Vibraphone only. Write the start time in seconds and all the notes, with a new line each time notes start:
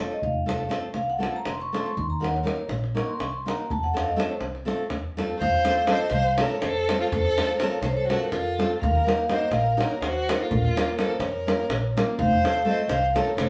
Already playing: C#5
0.12 D#5
0.24 F5
0.95 F5
1.10 F#5
1.36 A#5
1.47 C6
1.61 C#6
1.74 C6
1.86 C#6
1.98 C6
2.04 C6
2.10 A#5
2.21 F#5
2.33 C#5
2.96 C#6
3.08 C6
3.19 C#6
3.31 C6
3.48 A#5
3.70 A5
3.83 F#5
3.97 F5
4.08 D#5
4.19 C#5
4.29 C5
5.41 F5
5.89 D#5
6.12 F5
6.39 C#5
6.62 C5
7.01 A4
7.15 C5
7.60 C#5
7.84 C5
7.90 C#5
7.97 C5
8.10 A#4
8.26 A#4
8.33 A4
8.82 F5
9.30 D#5
9.51 F5
9.77 C#5
10.01 C5
10.40 A4
10.51 A#4
10.99 C5
11.20 C#5
12.19 F5
12.67 D#5
12.89 F5
13.16 C#5
13.39 C5